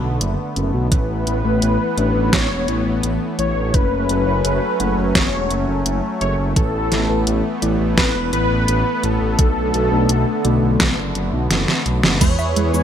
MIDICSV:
0, 0, Header, 1, 7, 480
1, 0, Start_track
1, 0, Key_signature, 3, "major"
1, 0, Tempo, 705882
1, 624, Time_signature, 4, 2, 24, 8
1, 8724, End_track
2, 0, Start_track
2, 0, Title_t, "Analog synth lead"
2, 0, Program_c, 0, 81
2, 622, Note_on_c, 0, 71, 107
2, 1583, Note_on_c, 0, 73, 124
2, 1593, Note_off_c, 0, 71, 0
2, 2063, Note_off_c, 0, 73, 0
2, 2304, Note_on_c, 0, 73, 107
2, 2545, Note_on_c, 0, 71, 120
2, 2555, Note_off_c, 0, 73, 0
2, 3500, Note_off_c, 0, 71, 0
2, 3504, Note_on_c, 0, 73, 102
2, 3956, Note_off_c, 0, 73, 0
2, 4224, Note_on_c, 0, 73, 104
2, 4319, Note_off_c, 0, 73, 0
2, 4463, Note_on_c, 0, 69, 104
2, 5156, Note_off_c, 0, 69, 0
2, 5425, Note_on_c, 0, 71, 113
2, 5648, Note_off_c, 0, 71, 0
2, 5665, Note_on_c, 0, 71, 114
2, 6144, Note_on_c, 0, 69, 115
2, 6154, Note_off_c, 0, 71, 0
2, 7824, Note_off_c, 0, 69, 0
2, 8303, Note_on_c, 0, 73, 127
2, 8724, Note_off_c, 0, 73, 0
2, 8724, End_track
3, 0, Start_track
3, 0, Title_t, "FM electric piano"
3, 0, Program_c, 1, 5
3, 983, Note_on_c, 1, 57, 91
3, 983, Note_on_c, 1, 64, 82
3, 983, Note_on_c, 1, 71, 97
3, 1314, Note_off_c, 1, 64, 0
3, 1315, Note_off_c, 1, 57, 0
3, 1315, Note_off_c, 1, 71, 0
3, 1343, Note_on_c, 1, 57, 81
3, 1343, Note_on_c, 1, 62, 90
3, 1343, Note_on_c, 1, 64, 75
3, 2529, Note_off_c, 1, 57, 0
3, 2529, Note_off_c, 1, 62, 0
3, 2529, Note_off_c, 1, 64, 0
3, 2903, Note_on_c, 1, 57, 87
3, 2903, Note_on_c, 1, 66, 80
3, 2903, Note_on_c, 1, 73, 94
3, 3234, Note_off_c, 1, 57, 0
3, 3234, Note_off_c, 1, 73, 0
3, 3235, Note_off_c, 1, 66, 0
3, 3263, Note_on_c, 1, 57, 87
3, 3263, Note_on_c, 1, 66, 75
3, 3263, Note_on_c, 1, 78, 88
3, 4449, Note_off_c, 1, 57, 0
3, 4449, Note_off_c, 1, 66, 0
3, 4449, Note_off_c, 1, 78, 0
3, 4823, Note_on_c, 1, 57, 92
3, 4823, Note_on_c, 1, 64, 83
3, 4823, Note_on_c, 1, 71, 98
3, 5155, Note_off_c, 1, 57, 0
3, 5155, Note_off_c, 1, 64, 0
3, 5155, Note_off_c, 1, 71, 0
3, 5183, Note_on_c, 1, 57, 83
3, 5183, Note_on_c, 1, 64, 78
3, 5183, Note_on_c, 1, 74, 93
3, 6369, Note_off_c, 1, 57, 0
3, 6369, Note_off_c, 1, 64, 0
3, 6369, Note_off_c, 1, 74, 0
3, 6743, Note_on_c, 1, 57, 95
3, 6743, Note_on_c, 1, 62, 82
3, 6743, Note_on_c, 1, 71, 98
3, 7075, Note_off_c, 1, 57, 0
3, 7075, Note_off_c, 1, 62, 0
3, 7075, Note_off_c, 1, 71, 0
3, 7103, Note_on_c, 1, 57, 88
3, 7103, Note_on_c, 1, 62, 78
3, 7103, Note_on_c, 1, 74, 89
3, 8289, Note_off_c, 1, 57, 0
3, 8289, Note_off_c, 1, 62, 0
3, 8289, Note_off_c, 1, 74, 0
3, 8663, Note_on_c, 1, 56, 93
3, 8663, Note_on_c, 1, 64, 83
3, 8663, Note_on_c, 1, 71, 103
3, 8724, Note_off_c, 1, 56, 0
3, 8724, Note_off_c, 1, 64, 0
3, 8724, Note_off_c, 1, 71, 0
3, 8724, End_track
4, 0, Start_track
4, 0, Title_t, "Synth arpeggio sound"
4, 0, Program_c, 2, 84
4, 8303, Note_on_c, 2, 56, 88
4, 8417, Note_off_c, 2, 56, 0
4, 8423, Note_on_c, 2, 76, 105
4, 8537, Note_off_c, 2, 76, 0
4, 8544, Note_on_c, 2, 56, 80
4, 8593, Note_off_c, 2, 56, 0
4, 8663, Note_on_c, 2, 64, 77
4, 8724, Note_off_c, 2, 64, 0
4, 8724, End_track
5, 0, Start_track
5, 0, Title_t, "Supersaw synth"
5, 0, Program_c, 3, 81
5, 0, Note_on_c, 3, 50, 78
5, 0, Note_on_c, 3, 57, 72
5, 0, Note_on_c, 3, 59, 95
5, 596, Note_off_c, 3, 59, 0
5, 597, Note_off_c, 3, 57, 0
5, 605, Note_off_c, 3, 50, 0
5, 623, Note_on_c, 3, 52, 82
5, 623, Note_on_c, 3, 59, 93
5, 624, Note_on_c, 3, 57, 76
5, 2524, Note_off_c, 3, 52, 0
5, 2524, Note_off_c, 3, 59, 0
5, 2544, Note_on_c, 3, 54, 82
5, 2544, Note_on_c, 3, 61, 88
5, 4445, Note_off_c, 3, 54, 0
5, 4445, Note_off_c, 3, 61, 0
5, 4464, Note_on_c, 3, 52, 84
5, 4464, Note_on_c, 3, 59, 94
5, 6365, Note_off_c, 3, 52, 0
5, 6383, Note_on_c, 3, 50, 83
5, 8276, Note_off_c, 3, 57, 0
5, 8276, Note_off_c, 3, 59, 0
5, 8284, Note_off_c, 3, 50, 0
5, 8302, Note_on_c, 3, 52, 86
5, 8303, Note_on_c, 3, 64, 77
5, 8303, Note_on_c, 3, 68, 77
5, 8303, Note_on_c, 3, 71, 95
5, 8724, Note_off_c, 3, 52, 0
5, 8724, Note_off_c, 3, 64, 0
5, 8724, Note_off_c, 3, 68, 0
5, 8724, Note_off_c, 3, 71, 0
5, 8724, End_track
6, 0, Start_track
6, 0, Title_t, "Detuned saw bass"
6, 0, Program_c, 4, 39
6, 24, Note_on_c, 4, 35, 83
6, 128, Note_off_c, 4, 35, 0
6, 143, Note_on_c, 4, 30, 106
6, 248, Note_off_c, 4, 30, 0
6, 382, Note_on_c, 4, 30, 90
6, 487, Note_off_c, 4, 30, 0
6, 503, Note_on_c, 4, 35, 79
6, 608, Note_off_c, 4, 35, 0
6, 623, Note_on_c, 4, 33, 101
6, 728, Note_off_c, 4, 33, 0
6, 742, Note_on_c, 4, 33, 73
6, 847, Note_off_c, 4, 33, 0
6, 862, Note_on_c, 4, 33, 83
6, 967, Note_off_c, 4, 33, 0
6, 982, Note_on_c, 4, 33, 78
6, 1087, Note_off_c, 4, 33, 0
6, 1102, Note_on_c, 4, 33, 102
6, 1207, Note_off_c, 4, 33, 0
6, 1342, Note_on_c, 4, 33, 91
6, 1447, Note_off_c, 4, 33, 0
6, 1462, Note_on_c, 4, 33, 82
6, 1567, Note_off_c, 4, 33, 0
6, 1583, Note_on_c, 4, 33, 103
6, 1688, Note_off_c, 4, 33, 0
6, 1702, Note_on_c, 4, 28, 76
6, 1807, Note_off_c, 4, 28, 0
6, 1822, Note_on_c, 4, 33, 92
6, 1927, Note_off_c, 4, 33, 0
6, 1942, Note_on_c, 4, 33, 83
6, 2047, Note_off_c, 4, 33, 0
6, 2062, Note_on_c, 4, 33, 106
6, 2167, Note_off_c, 4, 33, 0
6, 2303, Note_on_c, 4, 33, 93
6, 2408, Note_off_c, 4, 33, 0
6, 2422, Note_on_c, 4, 33, 80
6, 2527, Note_off_c, 4, 33, 0
6, 2543, Note_on_c, 4, 30, 96
6, 2648, Note_off_c, 4, 30, 0
6, 2663, Note_on_c, 4, 30, 74
6, 2768, Note_off_c, 4, 30, 0
6, 2783, Note_on_c, 4, 30, 90
6, 2888, Note_off_c, 4, 30, 0
6, 2903, Note_on_c, 4, 30, 82
6, 3008, Note_off_c, 4, 30, 0
6, 3023, Note_on_c, 4, 30, 101
6, 3128, Note_off_c, 4, 30, 0
6, 3263, Note_on_c, 4, 30, 90
6, 3368, Note_off_c, 4, 30, 0
6, 3383, Note_on_c, 4, 30, 82
6, 3488, Note_off_c, 4, 30, 0
6, 3503, Note_on_c, 4, 30, 95
6, 3608, Note_off_c, 4, 30, 0
6, 3623, Note_on_c, 4, 28, 78
6, 3728, Note_off_c, 4, 28, 0
6, 3743, Note_on_c, 4, 30, 90
6, 3848, Note_off_c, 4, 30, 0
6, 3863, Note_on_c, 4, 30, 83
6, 3968, Note_off_c, 4, 30, 0
6, 3983, Note_on_c, 4, 30, 105
6, 4088, Note_off_c, 4, 30, 0
6, 4223, Note_on_c, 4, 30, 96
6, 4328, Note_off_c, 4, 30, 0
6, 4342, Note_on_c, 4, 30, 77
6, 4447, Note_off_c, 4, 30, 0
6, 4463, Note_on_c, 4, 33, 99
6, 4568, Note_off_c, 4, 33, 0
6, 4582, Note_on_c, 4, 33, 72
6, 4687, Note_off_c, 4, 33, 0
6, 4703, Note_on_c, 4, 33, 87
6, 4808, Note_off_c, 4, 33, 0
6, 4823, Note_on_c, 4, 33, 83
6, 4928, Note_off_c, 4, 33, 0
6, 4943, Note_on_c, 4, 33, 100
6, 5048, Note_off_c, 4, 33, 0
6, 5184, Note_on_c, 4, 33, 88
6, 5288, Note_off_c, 4, 33, 0
6, 5303, Note_on_c, 4, 33, 82
6, 5408, Note_off_c, 4, 33, 0
6, 5423, Note_on_c, 4, 33, 99
6, 5528, Note_off_c, 4, 33, 0
6, 5543, Note_on_c, 4, 28, 78
6, 5648, Note_off_c, 4, 28, 0
6, 5663, Note_on_c, 4, 33, 90
6, 5768, Note_off_c, 4, 33, 0
6, 5783, Note_on_c, 4, 33, 79
6, 5888, Note_off_c, 4, 33, 0
6, 5902, Note_on_c, 4, 33, 103
6, 6007, Note_off_c, 4, 33, 0
6, 6143, Note_on_c, 4, 33, 92
6, 6248, Note_off_c, 4, 33, 0
6, 6263, Note_on_c, 4, 33, 80
6, 6368, Note_off_c, 4, 33, 0
6, 6384, Note_on_c, 4, 35, 101
6, 6488, Note_off_c, 4, 35, 0
6, 6503, Note_on_c, 4, 35, 73
6, 6608, Note_off_c, 4, 35, 0
6, 6624, Note_on_c, 4, 35, 92
6, 6728, Note_off_c, 4, 35, 0
6, 6744, Note_on_c, 4, 35, 81
6, 6848, Note_off_c, 4, 35, 0
6, 6863, Note_on_c, 4, 35, 100
6, 6968, Note_off_c, 4, 35, 0
6, 7103, Note_on_c, 4, 35, 92
6, 7208, Note_off_c, 4, 35, 0
6, 7224, Note_on_c, 4, 35, 80
6, 7328, Note_off_c, 4, 35, 0
6, 7343, Note_on_c, 4, 35, 100
6, 7448, Note_off_c, 4, 35, 0
6, 7464, Note_on_c, 4, 30, 74
6, 7568, Note_off_c, 4, 30, 0
6, 7584, Note_on_c, 4, 30, 91
6, 7688, Note_off_c, 4, 30, 0
6, 7705, Note_on_c, 4, 35, 85
6, 7809, Note_off_c, 4, 35, 0
6, 7824, Note_on_c, 4, 30, 105
6, 7928, Note_off_c, 4, 30, 0
6, 8064, Note_on_c, 4, 35, 93
6, 8168, Note_off_c, 4, 35, 0
6, 8185, Note_on_c, 4, 30, 79
6, 8289, Note_off_c, 4, 30, 0
6, 8303, Note_on_c, 4, 40, 103
6, 8408, Note_off_c, 4, 40, 0
6, 8424, Note_on_c, 4, 40, 73
6, 8528, Note_off_c, 4, 40, 0
6, 8544, Note_on_c, 4, 40, 89
6, 8648, Note_off_c, 4, 40, 0
6, 8664, Note_on_c, 4, 40, 81
6, 8724, Note_off_c, 4, 40, 0
6, 8724, End_track
7, 0, Start_track
7, 0, Title_t, "Drums"
7, 143, Note_on_c, 9, 42, 85
7, 211, Note_off_c, 9, 42, 0
7, 383, Note_on_c, 9, 42, 65
7, 451, Note_off_c, 9, 42, 0
7, 623, Note_on_c, 9, 36, 110
7, 624, Note_on_c, 9, 42, 84
7, 691, Note_off_c, 9, 36, 0
7, 692, Note_off_c, 9, 42, 0
7, 863, Note_on_c, 9, 42, 58
7, 931, Note_off_c, 9, 42, 0
7, 1103, Note_on_c, 9, 42, 84
7, 1171, Note_off_c, 9, 42, 0
7, 1343, Note_on_c, 9, 42, 60
7, 1411, Note_off_c, 9, 42, 0
7, 1583, Note_on_c, 9, 36, 111
7, 1584, Note_on_c, 9, 38, 110
7, 1584, Note_on_c, 9, 42, 84
7, 1651, Note_off_c, 9, 36, 0
7, 1652, Note_off_c, 9, 38, 0
7, 1652, Note_off_c, 9, 42, 0
7, 1823, Note_on_c, 9, 42, 60
7, 1891, Note_off_c, 9, 42, 0
7, 2063, Note_on_c, 9, 42, 82
7, 2131, Note_off_c, 9, 42, 0
7, 2304, Note_on_c, 9, 42, 59
7, 2372, Note_off_c, 9, 42, 0
7, 2543, Note_on_c, 9, 36, 107
7, 2543, Note_on_c, 9, 42, 80
7, 2611, Note_off_c, 9, 36, 0
7, 2611, Note_off_c, 9, 42, 0
7, 2783, Note_on_c, 9, 42, 59
7, 2851, Note_off_c, 9, 42, 0
7, 3024, Note_on_c, 9, 42, 82
7, 3092, Note_off_c, 9, 42, 0
7, 3264, Note_on_c, 9, 42, 60
7, 3332, Note_off_c, 9, 42, 0
7, 3503, Note_on_c, 9, 36, 109
7, 3503, Note_on_c, 9, 38, 106
7, 3503, Note_on_c, 9, 42, 81
7, 3571, Note_off_c, 9, 36, 0
7, 3571, Note_off_c, 9, 38, 0
7, 3571, Note_off_c, 9, 42, 0
7, 3743, Note_on_c, 9, 42, 61
7, 3811, Note_off_c, 9, 42, 0
7, 3984, Note_on_c, 9, 42, 86
7, 4052, Note_off_c, 9, 42, 0
7, 4224, Note_on_c, 9, 42, 60
7, 4292, Note_off_c, 9, 42, 0
7, 4463, Note_on_c, 9, 36, 105
7, 4463, Note_on_c, 9, 42, 89
7, 4531, Note_off_c, 9, 36, 0
7, 4531, Note_off_c, 9, 42, 0
7, 4704, Note_on_c, 9, 38, 33
7, 4704, Note_on_c, 9, 42, 60
7, 4772, Note_off_c, 9, 38, 0
7, 4772, Note_off_c, 9, 42, 0
7, 4943, Note_on_c, 9, 42, 84
7, 5011, Note_off_c, 9, 42, 0
7, 5183, Note_on_c, 9, 42, 61
7, 5251, Note_off_c, 9, 42, 0
7, 5423, Note_on_c, 9, 36, 109
7, 5424, Note_on_c, 9, 38, 106
7, 5424, Note_on_c, 9, 42, 81
7, 5491, Note_off_c, 9, 36, 0
7, 5492, Note_off_c, 9, 38, 0
7, 5492, Note_off_c, 9, 42, 0
7, 5664, Note_on_c, 9, 42, 62
7, 5732, Note_off_c, 9, 42, 0
7, 5904, Note_on_c, 9, 42, 84
7, 5972, Note_off_c, 9, 42, 0
7, 6143, Note_on_c, 9, 42, 64
7, 6211, Note_off_c, 9, 42, 0
7, 6383, Note_on_c, 9, 42, 86
7, 6384, Note_on_c, 9, 36, 113
7, 6451, Note_off_c, 9, 42, 0
7, 6452, Note_off_c, 9, 36, 0
7, 6623, Note_on_c, 9, 42, 64
7, 6691, Note_off_c, 9, 42, 0
7, 6863, Note_on_c, 9, 42, 85
7, 6931, Note_off_c, 9, 42, 0
7, 7104, Note_on_c, 9, 42, 64
7, 7172, Note_off_c, 9, 42, 0
7, 7343, Note_on_c, 9, 36, 110
7, 7343, Note_on_c, 9, 38, 111
7, 7343, Note_on_c, 9, 42, 88
7, 7411, Note_off_c, 9, 36, 0
7, 7411, Note_off_c, 9, 38, 0
7, 7411, Note_off_c, 9, 42, 0
7, 7584, Note_on_c, 9, 42, 64
7, 7652, Note_off_c, 9, 42, 0
7, 7824, Note_on_c, 9, 38, 62
7, 7824, Note_on_c, 9, 42, 94
7, 7892, Note_off_c, 9, 38, 0
7, 7892, Note_off_c, 9, 42, 0
7, 7944, Note_on_c, 9, 38, 63
7, 8012, Note_off_c, 9, 38, 0
7, 8064, Note_on_c, 9, 42, 65
7, 8132, Note_off_c, 9, 42, 0
7, 8184, Note_on_c, 9, 38, 81
7, 8252, Note_off_c, 9, 38, 0
7, 8303, Note_on_c, 9, 36, 117
7, 8303, Note_on_c, 9, 42, 97
7, 8303, Note_on_c, 9, 49, 100
7, 8303, Note_on_c, 9, 69, 49
7, 8371, Note_off_c, 9, 36, 0
7, 8371, Note_off_c, 9, 42, 0
7, 8371, Note_off_c, 9, 49, 0
7, 8371, Note_off_c, 9, 69, 0
7, 8424, Note_on_c, 9, 69, 28
7, 8492, Note_off_c, 9, 69, 0
7, 8544, Note_on_c, 9, 42, 67
7, 8612, Note_off_c, 9, 42, 0
7, 8663, Note_on_c, 9, 69, 61
7, 8724, Note_off_c, 9, 69, 0
7, 8724, End_track
0, 0, End_of_file